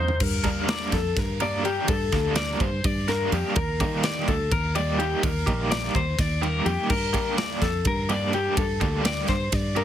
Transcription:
Already playing: F2 F3 A#3 D#4 C5
0.08 floor tom
0.20 G2 A#4, kick, crash
0.44 G3 A#3 D4 A#4, kick, ride
0.68 G3 A#3 D4 A#4 D5, snare, ride
0.92 F2 A4, kick, snare, ride
1.16 G2 A#4, kick, snare, ride
1.40 G3 A#3 D4 A#4 D5, ride
1.64 G3 A#3 D4 G4 A#4, ride
1.88 G2 A4, kick, ride
2.12 D2 G3 A#3 D4 A#4, kick, snare, ride
2.35 G3 A#3 D4 A#4 D5, snare, ride
2.60 G2 C5, kick, ride
2.84 G2 D5, kick, ride
3.08 G3 A#3 D4 A#4, snare, ride
3.32 F2 G3 A#3 D4 G4 A#4, ride
3.56 D#2 A#4, kick, ride
3.80 D#3 G3 A#3 D#4 G4, kick, ride
4.03 G3 A#3 D#4 G4 D5, snare, ride
4.28 D2 A4, kick, ride
4.52 D#2 A#4, kick, ride
4.75 G3 A#3 D#4 G4 D5, ride
4.99 G3 A#3 D#4 G4, ride
5.23 D#2 A#4, kick, ride
5.47 A#1 G3 A#3 D#4 G4, kick, ride
5.71 G3 A#3 D#4 G4 D5, snare, ride
5.95 D#2 C5, kick, ride
6.19 D#2 D5, kick, snare, ride
6.42 G3 A#3 D#4 G4 A#4, ride
6.66 F2 G3 A#3 D#4 G4, ride
6.90 G2 A#4, kick, crash
7.13 G3 A#3 D4 G4, kick, ride
7.38 G3 A#3 D4 G4 D5, snare, ride
7.61 F2 A4, kick, snare, ride
7.85 G2 A#4, kick, ride
8.09 G3 A#3 D4 G4 D5, ride
8.33 G3 A#3 D4 G4, ride
8.57 G2 A4, kick, ride
8.81 D2 G3 A#3 D4 G4, kick, ride
9.04 G3 A#3 D4 G4 D5, snare, ride
9.28 G2 C5, kick, snare, ride
9.52 G2 D5, kick, snare, ride
9.76 G3 A#3 D4 G4 A#4, ride

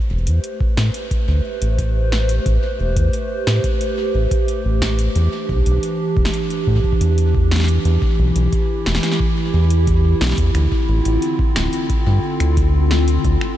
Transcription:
Already playing: A3 G4 B4 C5
0.10 E1
0.27 E2, closed hi-hat
0.44 closed hi-hat
0.61 kick
0.77 A2, snare
0.94 closed hi-hat
1.11 kick, closed hi-hat
1.28 D2
1.62 A1, closed hi-hat
1.78 kick, closed hi-hat
2.12 snare
2.29 closed hi-hat
2.46 A1, kick, closed hi-hat
2.80 E1
2.96 E2, kick, closed hi-hat
3.13 closed hi-hat
3.47 A2, snare
3.64 kick, closed hi-hat
3.81 closed hi-hat
4.14 A1
4.31 kick, closed hi-hat
4.48 closed hi-hat
4.65 A1
4.82 kick, snare
4.99 closed hi-hat
5.15 E2 E3 D4, closed hi-hat
5.49 B1, kick
5.66 B1, closed hi-hat
5.83 closed hi-hat
6.17 E1, kick
6.25 snare
6.34 closed hi-hat
6.50 closed hi-hat
6.67 A2, kick
6.76 kick
6.84 kick
6.92 kick
7.01 E2, closed hi-hat
7.18 closed hi-hat
7.35 kick
7.51 snare
7.56 snare
7.60 snare
7.64 snare
7.68 closed hi-hat
7.85 E2 E4, closed hi-hat
8.02 kick
8.19 B1
8.36 B1, closed hi-hat
8.53 kick, closed hi-hat
8.86 E1, snare
8.95 snare
9.03 snare, closed hi-hat
9.12 snare
9.20 kick
9.54 E2
9.70 closed hi-hat
9.87 kick, closed hi-hat
10.21 B1, snare
10.24 snare
10.27 snare
10.30 snare
10.32 snare
10.35 E2, kick, snare, closed hi-hat
10.55 D2 D3 C4 F4, finger snap, closed hi-hat
10.72 kick
10.89 A1
11.05 A1, closed hi-hat
11.22 closed hi-hat
11.39 kick
11.56 D1, finger snap, snare
11.73 closed hi-hat
11.90 kick, closed hi-hat
12.07 G2
12.40 D2, finger snap, closed hi-hat
12.57 kick, closed hi-hat
12.91 snare
13.08 closed hi-hat
13.25 D2 D4, kick, closed hi-hat
13.41 finger snap

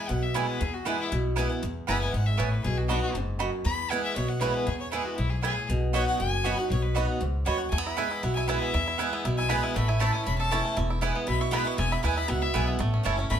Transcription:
Already playing: G#5
0.09 B1 B2 F#5
0.22 E5
0.34 E3 G#3 B3 E4 B4 C#5 G#5
0.48 B4
0.60 E2 G#4
0.74 F#4
0.85 E3 G#3 B3 E4 B4 G#5
1.00 E4
1.12 B1 B2
1.36 E3 G#3 B3 E4 B4 G#5
1.49 B3 E4
1.62 E2
1.87 F#1 E3 G#3 B3 E4 B4 G#5 B5
2.01 G#5
2.13 G#1 G#2 F#5
2.26 E5
2.37 A1 A2 B3 E4 B4 C#5 G#5
2.52 B4
2.64 B1 B2 G#4
2.78 F#4
2.88 F#3 B3 D4 D#4 F#4 D#5 B5
3.02 F#4
3.14 F#1 G#2
3.39 F#2 B3 F#4 D#5 B5
3.65 E2 B5
3.90 E3 G#3 B3 E4 B4 F#5 G#5
4.03 E5
4.16 B1 B2 C#5
4.29 F#5
4.40 E3 G#3 B3 E4 B4 C#5 G#5
4.54 B4
4.67 E2 G#4
4.80 C#5
4.92 E3 G#3 B3 E4 G#4 B4 G#5
5.05 F#4
5.17 B1 G#2 E4
5.30 G#4
5.43 A2 B3 E4 G#4 B4 G#5
5.69 B1 B2
5.93 F#3 B3 D#4 F#4 C#5 D#5 B5
6.07 F#5
6.19 F#1 F#2 G#5
6.44 F#3 B3 D#4 F#4 D#5 B5
6.58 D#4 F#4 F#5
6.70 B1 B2 C#5
6.83 B4
6.95 F#3 B3 D#4 F#4 D#5 B5
7.20 C#2 G#2
7.45 D#2 F#2 B3 F#4 C#5 D#5 B5
7.58 F#5
7.70 E2 A3 G#5
7.78 B3
7.84 E4 B5
7.97 E3 G#3 B3 E4 B4 G#5
8.11 E4
8.23 B1 B2 E4 F#5
8.35 E4 G#5
8.48 E3 G#3 B3 E4 B4 E5 G#5
8.62 B3
8.74 E2 E4
8.88 E4
8.98 E3 G#3 B3 E4 B4 G#5
9.13 B3
9.25 B1 B2 E4
9.38 E4 G#5
9.49 E3 G#3 B3 E4 B4 G#5 B5
9.63 E4 G#5
9.75 A1 A2 A3 B5
9.88 E4 G#5
10.00 E3 A3 C#4 E4 A4 C#5 A5 B5
10.13 E4 G#5
10.25 E1 E2 C#4 B5
10.38 A4 A5
10.51 E3 A3 C#4 E4 C#5 A5
10.65 A3
10.77 E1 E2 E4
10.90 E4
11.01 E3 G#3 B3 E4 B4 G#5
11.15 B3
11.27 B1 B2 E4 B5
11.41 E4 C#6
11.51 E3 G#3 B3 E4 B4 G#5 B5
11.64 B3 E4 C#6
11.78 E1 E2 B3 G#5
11.92 E4 B5
12.03 D#2 E3 G#3 B3 E4 B4 G#5
12.17 E4 B5
12.28 C#2 B2 E4 F#5
12.42 E4 E5
12.54 B1 E3 G#3 B3 E4 B4 G#5
12.68 B3
12.79 A1 A2 A3
12.94 C#4
13.03 F#1 E3 A3 C#4 E4 C#5 A5
13.17 C#4 E4
13.30 G#1 E2 A3 B5

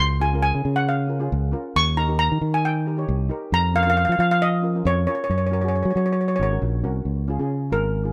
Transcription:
0.00 C#2
0.20 C#4 F4 G#4 G#5
0.33 C#4 F4 A#4
0.43 G#5
0.55 C#3
0.65 C#3
0.76 F#5
0.89 F5
1.08 C#4 F4 A#4
1.19 C#4 F4 G#4
1.32 C#2
1.52 C#4 F4 A#4
1.76 D#2 C#6
1.97 D#4 G4 A#4 A#5
2.08 D#4 G4 A#4
2.19 A#5
2.32 D#3
2.41 D#3
2.54 G#5
2.65 G5
2.86 D#4 G4 A#4
2.97 D#4 G4 C#5
3.09 C2
3.29 D#4 G4 A#4
3.52 F2 A#5
3.74 C#4 F4 A#4 F5
3.83 C#4 F4 F5
3.88 A#4 F5
3.97 F5
4.05 F3 F5
4.12 F5
4.19 F3 F5
4.31 F5
4.42 D#5
4.62 C#4 F4 A#4
4.75 C#4 F4 A#4
4.85 F2 C#5
5.07 C#4 F4 A#4 C#5
5.15 C#5
5.24 C#5
5.30 F#2 C#5
5.38 C#5
5.47 C#5
5.51 C#4 F#4 A#4 C#5
5.61 C#4 F#4 G#4 C#5
5.69 C#5
5.75 C#5
5.83 F#3 C#5
5.91 C#5
5.96 F#3 C#5
6.06 C#5
6.13 C#5
6.21 C#5
6.28 C#5
6.36 G#1 C#5
6.40 C#4 F#4 A#4 C#5
6.51 C#4 F#4 A#4
6.62 A#1
6.83 C2 C#4 F#4 A#4
7.05 C#2
7.28 C#4 F4 G#4
7.39 C#3 C#4 F4 G#4
7.70 G#1 C#4 F4 G#4 A#4
8.03 C#4 F4 G#4

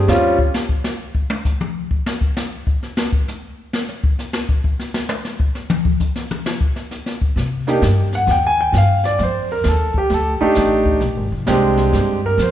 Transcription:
0.07 D#2 G3 C4 C#4 F4, snare
0.39 kick
0.54 snare, hi-hat pedal
0.69 kick
0.84 snare
1.15 kick
1.30 high tom
1.45 kick, hi-hat pedal
1.61 mid tom
1.91 kick
2.06 snare
2.21 kick
2.37 snare, hi-hat pedal
2.67 kick
2.83 snare
2.97 snare
3.13 kick
3.28 hi-hat pedal, high tom
3.73 snare
3.89 snare
4.04 kick
4.19 snare, hi-hat pedal
4.33 snare
4.49 kick
4.64 kick
4.79 snare
4.94 snare
5.09 hi-hat pedal, high tom
5.25 snare
5.40 kick
5.55 snare
5.70 mid tom
5.85 kick
6.00 kick, hi-hat pedal
6.16 snare
6.31 mid tom
6.46 snare
6.61 kick
6.76 snare
6.91 snare, hi-hat pedal
7.06 snare
7.22 kick
7.36 C3, brush sweep, snare
7.67 A#3 D4 D#4 G4, snare
7.82 G2, snare, hi-hat pedal
8.13 F#5, snare
8.27 D#2, brush sweep, snare
8.31 G5
8.47 G#5
8.61 G5
8.72 G2, snare, hi-hat pedal
8.78 F5
9.04 D5, snare
9.19 F2, brush sweep, snare
9.23 C5
9.52 A#4
9.64 D#2, snare, hi-hat pedal
9.69 A4
9.94 G4, muted upright bass stroke, kick
10.10 D2, brush sweep, snare
10.14 A4
10.40 A3 D4 D#4 G4, muted upright bass stroke
10.55 A1, snare, hi-hat pedal
10.86 kick
11.01 A#1, brush sweep, snare
11.16 G#1
11.32 F1
11.47 C2 G#3 C4 D4 G4, snare, hi-hat pedal
11.77 snare
11.92 G2, brush sweep, snare
12.26 A#4
12.38 F2, snare, hi-hat pedal
12.42 C5

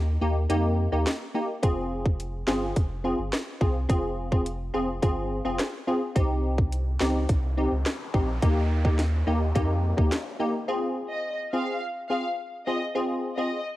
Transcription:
Already playing: D#2
0.21 D#2 A#3 D#4 G4
0.49 F2 A#3 D#4 G4, closed hi-hat
0.92 D#2 A#3 D#4 G4
1.07 snare, closed hi-hat
1.34 A#3 D#4 G4
1.63 F1 C4 F4 G#4, kick, closed hi-hat
2.06 kick
2.20 closed hi-hat
2.47 G1 C4 F4 G#4, snare
2.76 F1, kick, closed hi-hat
3.04 C4 F4 G#4
3.19 G1
3.33 cross-stick, snare, closed hi-hat
3.61 C2 C4 F4 G#4, kick
3.89 F1 C4 F4 G#4, kick, closed hi-hat
4.32 C4 F4 G#4, kick
4.46 closed hi-hat
4.74 F1 C4 F4 G#4
5.02 G1 C4 F4 G#4, kick, closed hi-hat
5.45 F1 C4 F4 G#4
5.59 cross-stick, snare, closed hi-hat
5.87 C4 F4 G#4
6.16 C2 C4 D#4 G4, kick, closed hi-hat, noise sweep
6.58 kick
6.73 closed hi-hat
7.01 C#2 C4 D#4 G4, snare
7.29 C2, kick, closed hi-hat
7.57 C4 D#4 G4
7.72 C#2
7.86 cross-stick, snare, closed hi-hat
8.14 A#1 C4 D#4 G4, kick
8.42 D#2 A#3 D#4 G4, kick, closed hi-hat
8.85 A#3 D#4 G4, kick
8.99 snare, closed hi-hat
9.27 D#2 A#3 D#4 G4
9.55 F2 A#3 D#4 G4, kick, closed hi-hat
9.97 D#2 A#3 D#4 G4, kick
10.12 snare, closed hi-hat
10.40 A#3 D#4 G4
10.68 C4 F4 G#4
11.11 D#5
11.53 C4 F4 G#4 F5
12.10 C4 F4 G#4 F5
12.67 C4 F4 G#4 D#5
12.95 C4 F4 G#4
13.37 C4 F4 G#4 D#5

